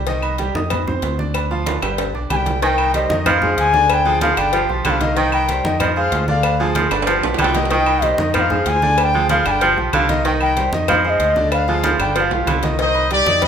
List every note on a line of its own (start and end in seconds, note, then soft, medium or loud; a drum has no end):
0.00 0.49 C2 loud
0.07 0.33 D#3 medium
0.07 0.33 D#4 medium
0.07 0.34 D#5 medium
0.07 cowbell loud
0.07 high conga soft
0.22 high conga soft
0.22 low agogo loud
0.22 claves medium
0.38 0.52 G3 medium
0.38 0.52 G4 medium
0.38 0.52 G5 medium
0.38 cowbell medium
0.38 high conga medium
0.38 low agogo medium
0.55 0.99 F2 medium
0.55 0.81 D#4 medium
0.55 0.81 D#5 medium
0.55 0.82 D#6 medium
0.55 high conga medium
0.70 cowbell loud
0.70 high conga soft
0.70 low conga medium
0.70 low agogo loud
0.70 claves medium
0.87 1.13 C4 medium
0.87 1.13 C5 medium
0.87 1.13 C6 medium
0.87 high conga soft
0.87 low conga medium
1.02 1.77 D2 loud
1.02 cowbell medium
1.02 high conga soft
1.02 low timbale medium
1.02 low agogo medium
1.19 1.45 D4 medium
1.19 1.45 D5 medium
1.19 1.45 D6 medium
1.19 high conga medium
1.34 cowbell loud
1.34 high conga soft
1.34 low agogo loud
1.34 claves medium
1.50 1.77 F3 medium
1.50 1.77 F4 medium
1.50 1.77 F5 medium
1.50 high conga soft
1.66 cowbell medium
1.66 high conga medium
1.66 high timbale loud
1.66 low agogo medium
1.82 2.12 G1 medium
1.82 2.09 G3 medium
1.82 2.09 G4 medium
1.82 2.09 G5 medium
1.82 cowbell medium
1.82 high conga soft
1.82 high timbale loud
1.82 low agogo loud
1.82 claves medium
1.98 cowbell loud
1.98 high conga soft
1.98 high timbale loud
1.98 low agogo medium
2.14 2.29 B1 medium
2.14 2.27 D4 medium
2.14 2.27 D5 medium
2.14 2.28 D6 medium
2.14 high conga soft
2.30 3.04 C2 medium
2.30 2.56 G3 medium
2.30 2.56 G4 medium
2.30 2.57 G5 medium
2.30 2.37 G#5 medium
2.30 cowbell medium
2.30 high conga medium
2.30 low agogo loud
2.30 claves medium
2.36 2.61 G5 loud
2.46 cowbell medium
2.46 high conga medium
2.46 low timbale medium
2.62 2.88 D#3 medium
2.62 2.99 D#3 medium
2.62 2.88 D#4 medium
2.62 2.88 D#5 medium
2.62 2.68 G#5 medium
2.62 cowbell loud
2.62 high conga soft
2.67 2.92 G5 loud
2.78 high conga soft
2.78 low agogo loud
2.78 claves medium
2.94 3.07 G3 medium
2.94 3.07 G4 medium
2.94 3.07 C5 medium
2.94 3.29 D#5 medium
2.94 cowbell medium
2.94 high conga medium
2.94 low agogo medium
3.09 3.54 F2 medium
3.09 3.36 D#3 medium
3.09 3.36 D#4 medium
3.09 3.36 D#5 medium
3.09 high conga loud
3.26 3.74 F3 medium
3.26 3.58 F5 loud
3.26 cowbell loud
3.26 high conga soft
3.26 low conga medium
3.26 low agogo loud
3.26 claves medium
3.42 3.68 G#3 medium
3.42 3.68 G#4 medium
3.42 3.68 C5 medium
3.42 high conga soft
3.42 low conga medium
3.58 4.32 D2 loud
3.58 3.90 G#5 loud
3.58 cowbell medium
3.58 high conga soft
3.58 low agogo medium
3.73 3.99 D3 medium
3.73 4.00 D4 loud
3.73 4.00 D5 medium
3.73 high conga medium
3.90 3.95 G#5 loud
3.90 cowbell loud
3.90 low agogo loud
3.90 claves medium
3.94 4.22 G5 loud
4.05 4.14 D3 medium
4.05 4.31 F3 loud
4.05 4.32 F4 medium
4.05 4.32 G#4 loud
4.05 high conga soft
4.21 4.39 F3 medium
4.21 4.40 F5 loud
4.21 cowbell medium
4.21 high conga medium
4.21 low agogo medium
4.37 4.67 G1 medium
4.37 4.50 D3 medium
4.37 4.50 D4 medium
4.37 4.50 D5 medium
4.37 4.69 G5 loud
4.37 cowbell medium
4.37 high conga soft
4.37 low agogo loud
4.37 claves medium
4.53 4.66 F3 medium
4.53 4.70 F3 medium
4.53 4.66 F4 medium
4.53 4.66 G4 medium
4.53 cowbell loud
4.53 high conga soft
4.53 low agogo medium
4.69 4.84 B1 medium
4.69 4.95 F3 medium
4.69 4.95 F4 medium
4.69 4.95 G4 medium
4.69 high conga soft
4.85 5.59 C2 medium
4.85 5.02 D3 loud
4.85 4.91 G5 medium
4.85 cowbell medium
4.85 high conga loud
4.85 low agogo loud
4.85 claves medium
4.90 5.19 F5 loud
5.01 5.14 D#3 medium
5.01 5.14 D#4 medium
5.01 5.14 D#5 medium
5.01 cowbell medium
5.01 high conga loud
5.17 5.53 D#3 medium
5.17 5.43 D#3 loud
5.17 5.43 D#4 medium
5.17 5.43 D#5 medium
5.17 5.33 G5 loud
5.17 cowbell loud
5.17 high conga soft
5.32 5.77 G5 loud
5.32 high conga soft
5.32 low agogo loud
5.32 claves medium
5.49 5.62 G3 medium
5.49 5.62 G4 medium
5.49 5.62 C5 medium
5.49 cowbell medium
5.49 high conga medium
5.49 low agogo medium
5.64 6.09 F2 loud
5.64 5.90 D#3 medium
5.64 5.90 D#4 medium
5.64 5.91 D#5 medium
5.64 high conga loud
5.80 6.28 F3 medium
5.80 5.87 D#5 medium
5.80 cowbell loud
5.80 high conga soft
5.80 low conga medium
5.80 low agogo loud
5.80 claves medium
5.96 6.22 G#3 medium
5.96 6.22 G#4 medium
5.96 6.23 C5 medium
5.96 6.26 F5 loud
5.96 high conga soft
6.12 6.86 D2 loud
6.12 cowbell medium
6.12 high conga soft
6.12 low timbale medium
6.12 low agogo medium
6.28 6.54 D3 medium
6.28 6.54 D4 loud
6.28 6.54 D5 loud
6.28 6.73 F5 medium
6.28 high conga medium
6.43 cowbell loud
6.43 high conga soft
6.43 low agogo loud
6.43 claves medium
6.59 6.68 D3 medium
6.59 6.86 F3 loud
6.59 6.86 F4 medium
6.59 6.86 G#4 loud
6.59 high conga soft
6.75 6.92 F3 medium
6.75 cowbell medium
6.75 high conga medium
6.75 low agogo medium
6.91 7.21 G1 medium
6.91 7.05 D3 medium
6.91 7.05 D4 medium
6.91 7.05 D5 medium
6.91 cowbell medium
6.91 high conga soft
6.91 high timbale loud
6.91 low agogo loud
6.91 claves medium
7.02 high timbale loud
7.07 7.23 F3 medium
7.07 7.20 F3 medium
7.07 7.20 F4 medium
7.07 7.21 G4 medium
7.07 cowbell loud
7.07 high conga soft
7.07 low agogo medium
7.23 7.38 B1 medium
7.23 7.49 F3 medium
7.23 7.50 F4 medium
7.23 7.50 G4 medium
7.23 high conga soft
7.23 high timbale loud
7.34 low timbale loud
7.38 8.13 C2 loud
7.38 7.55 D3 loud
7.38 7.69 G5 loud
7.38 cowbell medium
7.38 high conga loud
7.38 low agogo loud
7.38 claves medium
7.44 low timbale loud
7.54 7.68 D#3 medium
7.54 7.69 D#4 loud
7.54 7.69 D#5 medium
7.54 cowbell medium
7.54 high conga medium
7.54 low timbale loud
7.65 low timbale medium
7.71 7.97 D#3 medium
7.71 8.07 D#3 medium
7.71 7.97 D#4 medium
7.71 7.97 D#5 medium
7.71 8.05 G5 loud
7.71 cowbell loud
7.71 high conga soft
7.86 high conga soft
7.86 low agogo loud
7.86 claves medium
8.02 8.15 G3 medium
8.02 8.16 G4 medium
8.02 8.16 C5 medium
8.02 8.35 D#5 loud
8.02 cowbell medium
8.02 high conga medium
8.02 low agogo medium
8.18 8.63 F2 loud
8.18 8.45 D#3 medium
8.18 8.45 D#4 medium
8.18 8.45 D#5 medium
8.18 high conga medium
8.34 8.82 F3 medium
8.34 8.41 G5 loud
8.34 cowbell loud
8.34 high conga soft
8.34 low conga medium
8.34 low agogo loud
8.34 claves medium
8.40 8.69 F5 loud
8.50 8.76 G#3 medium
8.50 8.76 G#4 medium
8.50 8.77 C5 medium
8.50 high conga soft
8.50 low conga medium
8.66 9.40 D2 loud
8.66 9.00 G#5 loud
8.66 cowbell medium
8.66 high conga soft
8.66 low timbale medium
8.66 low agogo medium
8.82 9.08 D3 medium
8.82 9.08 D4 loud
8.82 9.09 D5 loud
8.82 high conga medium
8.98 9.04 G#5 loud
8.98 cowbell loud
8.98 high conga soft
8.98 low agogo loud
8.98 claves medium
9.04 9.30 G5 loud
9.14 9.22 D3 medium
9.14 9.40 F3 medium
9.14 9.40 F4 medium
9.14 9.40 G#4 medium
9.14 high conga soft
9.29 9.47 F3 medium
9.29 9.49 F5 loud
9.29 cowbell medium
9.29 high conga medium
9.29 low agogo medium
9.46 9.75 G1 loud
9.46 9.59 D3 medium
9.46 9.59 D4 medium
9.46 9.59 D5 medium
9.46 9.52 G#5 loud
9.46 cowbell medium
9.46 high conga soft
9.46 low agogo loud
9.46 claves medium
9.51 9.78 G5 loud
9.61 9.75 F3 medium
9.61 9.78 F3 loud
9.61 9.75 F4 medium
9.61 9.75 G4 medium
9.61 cowbell loud
9.61 high conga soft
9.61 low agogo medium
9.77 9.92 B1 medium
9.77 10.03 F3 medium
9.77 10.03 F4 medium
9.77 10.03 G4 medium
9.77 high conga soft
9.93 10.67 C2 loud
9.93 10.10 D3 medium
9.93 10.23 F5 loud
9.93 cowbell medium
9.93 high conga medium
9.93 low agogo loud
9.93 claves medium
10.09 10.22 D#3 medium
10.09 10.22 D#4 medium
10.09 10.22 D#5 loud
10.09 cowbell medium
10.09 high conga loud
10.24 10.51 D#3 medium
10.24 10.61 D#3 medium
10.24 10.51 D#4 loud
10.24 10.51 D#5 loud
10.24 10.32 G5 loud
10.24 cowbell loud
10.24 high conga soft
10.40 10.71 G5 loud
10.40 high conga soft
10.40 low agogo loud
10.40 claves medium
10.57 10.70 G3 medium
10.57 10.70 G4 medium
10.57 10.70 C5 medium
10.57 cowbell medium
10.57 high conga medium
10.57 low agogo medium
10.72 11.17 F2 medium
10.72 10.99 D#3 medium
10.72 10.99 D#4 medium
10.72 10.99 D#5 medium
10.72 high conga medium
10.88 11.36 F3 loud
10.88 10.95 F5 loud
10.88 cowbell loud
10.88 high conga soft
10.88 low conga medium
10.88 low agogo loud
10.88 claves medium
11.04 11.30 G#3 medium
11.04 11.30 G#4 medium
11.04 11.31 C5 medium
11.04 11.11 F5 medium
11.04 high conga soft
11.10 11.49 D#5 loud
11.20 11.94 D2 loud
11.20 cowbell medium
11.20 high conga soft
11.20 low agogo medium
11.36 11.62 D3 loud
11.36 11.62 D4 medium
11.36 11.62 D5 loud
11.36 high conga medium
11.52 11.97 F5 loud
11.52 cowbell loud
11.52 high conga soft
11.52 low agogo loud
11.52 claves medium
11.68 11.76 D3 medium
11.68 11.94 F3 loud
11.68 11.94 F4 medium
11.68 11.94 G#4 medium
11.68 high conga soft
11.83 12.00 F3 medium
11.83 cowbell medium
11.83 high conga loud
11.83 low agogo medium
11.99 12.29 G1 loud
11.99 12.12 D3 medium
11.99 12.13 D4 medium
11.99 12.13 D5 medium
11.99 12.17 G5 medium
11.99 cowbell medium
11.99 high conga soft
11.99 low agogo loud
11.99 claves medium
12.15 12.32 F3 medium
12.15 12.28 F3 medium
12.15 12.29 F4 medium
12.15 12.29 G4 medium
12.15 12.22 G5 medium
12.15 cowbell loud
12.15 high conga soft
12.15 high timbale medium
12.15 low agogo medium
12.21 12.63 F5 medium
12.31 12.46 B1 medium
12.31 12.57 F3 medium
12.31 12.57 F4 medium
12.31 12.58 G4 medium
12.31 high conga soft
12.31 low timbale medium
12.47 13.21 C2 loud
12.47 12.64 D3 medium
12.47 cowbell medium
12.47 high conga loud
12.47 low agogo loud
12.47 claves medium
12.63 12.76 D#3 medium
12.63 12.76 D#4 medium
12.63 12.76 D#5 medium
12.63 cowbell medium
12.63 high conga loud
12.63 low timbale medium
12.79 13.05 D#3 medium
12.79 13.05 D#4 medium
12.79 13.10 C5 medium
12.79 13.05 D#5 medium
12.79 13.09 D#5 loud
12.79 cowbell loud
12.79 high conga soft
12.95 high conga soft
12.95 low agogo loud
13.11 13.24 G3 medium
13.11 13.24 G4 medium
13.11 13.41 G4 medium
13.11 13.41 D5 loud
13.11 13.24 G5 medium
13.11 cowbell medium
13.11 high conga medium
13.11 low agogo medium
13.26 13.48 F2 medium
13.26 13.48 D#4 medium
13.26 13.48 D#5 medium
13.26 13.48 D#6 medium
13.26 high conga loud
13.42 13.48 C5 medium
13.42 13.48 D#5 loud
13.42 cowbell loud
13.42 high conga soft
13.42 low conga medium
13.42 low agogo loud